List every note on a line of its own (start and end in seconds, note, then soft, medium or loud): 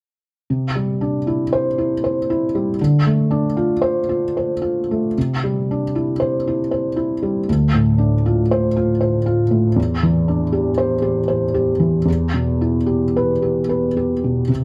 0.50 2.75 C3 soft
0.75 1.16 G3 soft
1.01 1.42 D4 soft
1.27 1.68 E4 soft
1.53 1.93 C5 medium
1.78 2.18 E4 soft
2.04 2.44 C5 soft
2.30 2.70 E4 soft
2.55 2.80 G3 soft
2.81 5.13 D3 soft
3.06 3.46 A3 soft
3.31 3.72 D4 soft
3.57 3.98 F4 soft
3.82 4.24 C5 medium
4.09 4.52 F4 soft
4.37 4.79 C5 soft
4.62 5.05 F4 soft
4.91 5.17 A3 soft
5.18 7.44 C3 soft
5.44 5.84 G3 soft
5.71 6.10 D4 soft
5.95 6.35 E4 soft
6.20 6.60 C5 soft
6.47 6.87 E4 soft
6.71 7.12 C5 soft
6.96 7.37 E4 soft
7.23 7.48 G3 soft
7.49 9.74 D2 soft
7.74 8.15 A2 soft
7.98 8.40 D4 soft
8.26 8.66 F4 soft
8.51 8.91 C5 medium
8.76 9.17 F4 soft
9.01 9.41 C5 soft
9.26 9.67 F4 soft
9.51 9.77 A2 soft
9.76 12.03 E2 soft
10.03 10.43 E3 soft
10.28 10.68 D4 soft
10.52 10.93 G4 soft
10.78 11.19 C5 medium
11.02 11.44 G4 soft
11.28 11.70 C5 soft
11.54 11.96 G4 soft
11.80 12.06 E3 soft
12.05 14.44 E2 soft
12.34 12.76 B2 soft
12.61 13.04 E4 soft
12.86 13.30 G4 soft
13.16 13.59 B4 soft
13.42 13.85 G4 soft
13.69 14.12 B4 soft
13.97 14.39 G4 soft
14.24 14.50 B2 soft
14.48 14.64 C3 soft